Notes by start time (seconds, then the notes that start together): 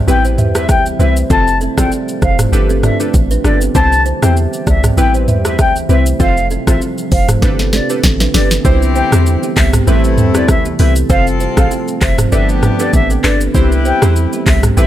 0.08 A1 C3 G3 A3 C4 E4 G4 B4 G5, shaker
0.25 E4 C5, shaker
0.38 E2 G4 E5, mid tom, shaker
0.55 C4 E4 G4 B4 E5, cross-stick, shaker
0.69 D2 G4 E5 G5, kick, cross-stick, shaker
0.86 shaker
0.99 C2 C4 E4 G4 B4 C5 E5, shaker
1.16 shaker
1.30 F1 F3 A3 C4 F4 A4 C5 A5, kick, shaker
1.48 shaker
1.61 C4 A4, shaker
1.77 A1 C4 F4 A4 C5 D5 G5, kick, cross-stick, shaker
1.92 shaker
2.08 shaker
2.22 F1 E4 C5 F5, kick, cross-stick, shaker
2.39 cross-stick, mid tom, shaker
2.52 G1 D3 B3 D4 G4 A4 B4, shaker
2.69 C4 A4, shaker
2.83 F4 D5 E5, cross-stick, mid tom, shaker
3.00 D4 G4 A4 B4, shaker
3.14 A1, kick, shaker
3.31 D4 B4, shaker
3.44 G1 D4 G4 A4 B4 D5, cross-stick, shaker
3.61 C4 A4, shaker
3.75 C2 E3 G3 C4 E4 G4 C5 A5, kick, shaker
3.92 shaker
4.06 E4 C5, shaker
4.22 E2 C4 E4 G4 C5 E5 G5, cross-stick, shaker
4.37 shaker
4.53 shaker
4.67 C2 F4 D5 E5, kick, cross-stick, shaker
4.84 cross-stick, mid tom, shaker
4.97 A1 C3 G3 A3 C4 E4 G4 B4 G5, shaker
5.14 E4 C5, shaker
5.28 E2 G4 E5, mid tom, shaker
5.45 C4 E4 G4 B4 E5, cross-stick, shaker
5.59 D2 G4 E5 G5, kick, cross-stick, shaker
5.76 shaker
5.89 C2 C4 E4 G4 B4 C5 E5, shaker
6.06 shaker
6.20 F1 F3 C4 F4 A4 C5 F5, kick, shaker
6.37 shaker
6.50 C4 A4, shaker
6.67 A1 C4 F4 A4 C5 E5, kick, cross-stick, shaker
6.81 shaker
6.98 shaker
7.12 F1 E4 C5 F5, kick, open hi-hat, shaker
7.28 cross-stick, mid tom, shaker
7.42 G1 D3 A3 B3 D4 G4 A4 B4, kick, snare, shaker
7.59 B3 G4, snare, shaker
7.73 C4 A4 D5, snare, shaker
7.90 D4 G4 A4 B4, shaker
8.03 A1, kick, snare, shaker
8.20 D4 B4, snare, shaker
8.34 G1 D4 G4 A4 B4 D5, snare, open hi-hat, shaker
8.51 D4 B4, snare, shaker
8.65 C2 E3 G3 C4 E4 G4 C5, kick, shaker
8.82 shaker
8.96 E4 C5 G5, shaker
9.12 E2 C4 E4 G4 A4 C5, cross-stick, shaker
9.26 shaker
9.43 B3 G4, shaker
9.57 C2 B3 G4 E5, kick, cross-stick, clap, open hi-hat, shaker
9.73 cross-stick, mid tom, shaker
9.87 A1 C3 A3 C4 E4 G4 A4 B4 E5, shaker
10.04 shaker
10.18 E2, mid tom, shaker
10.35 C4 E4 G4 B4 D5, cross-stick, shaker
10.48 D2 E5, kick, cross-stick, shaker
10.65 B3 G4, shaker
10.79 C2 C4 E4 G4 A4 B4 E5, open hi-hat, shaker
10.96 shaker
11.10 F1 F3 C4 F4 A4 C5 F5, kick, shaker
11.27 shaker
11.40 E4 C5, shaker
11.57 A1 C4 F4 A4 C5 F5, kick, cross-stick, shaker
11.71 C4 A4, shaker
11.88 shaker
12.01 F1 E4 C5 E5, kick, cross-stick, clap, open hi-hat, shaker
12.18 cross-stick, mid tom, shaker
12.32 G1 D3 B3 D4 G4 A4 B4 D5 E5, shaker
12.49 shaker
12.62 D4 B4, cross-stick, mid tom, shaker
12.79 C4 D4 G4 A4 B4 D5, shaker
12.93 A1 E5, kick, shaker
13.10 C4 A4, shaker
13.24 G1 D4 G4 A4 B4 D5, cross-stick, clap, open hi-hat, shaker
13.41 shaker
13.54 C2 E3 G3 C4 E4 G4 B4 C5, kick, shaker
13.72 shaker
13.85 E4 C5 G5, shaker
14.02 E2 C4 E4 G4 A4 C5, cross-stick, shaker
14.16 shaker
14.33 B3 G4, shaker
14.46 C2 B3 G4 E5, kick, cross-stick, clap, open hi-hat, shaker
14.63 cross-stick, mid tom, shaker
14.77 A1 C3 A3 C4 E4 G4 A4 B4 E5, shaker